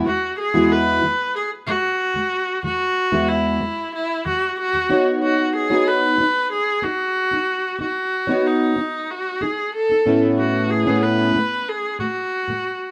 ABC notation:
X:1
M:4/4
L:1/16
Q:1/4=93
K:E
V:1 name="Viola"
F2 G2 B4 G2 F6 | F4 E4 E2 F2 F3 z | F2 G2 B4 G2 F6 | F4 D4 F2 G2 A3 z |
F2 G2 B4 G2 F6 |]
V:2 name="Steel-string acoustic guitar"
[E,,E,G,]2 z [E,,E,G,B,EF]3 [E,,E,G,]2 z2 [E,,E,G,]2 z [E,,E,G,]2 z | [E,,E,G,]2 z [E,,E,G,B,EF]3 [E,,E,G,]2 z2 [E,,E,G,]2 z [E,,E,G,] [B,DFc]2- | [B,DFc]3 [B,DFc]3 [B,D]2 z2 [B,D]2 z [B,D]2 z | [B,D]2 z [B,DFc]3 D2 z2 [B,D]2 z [B,D] [A,,A,B,CE]2- |
[A,,A,B,CE]3 [A,,A,B,CE]3 [A,,A,]2 z2 [A,,A,]2 z [A,,A,]2 z |]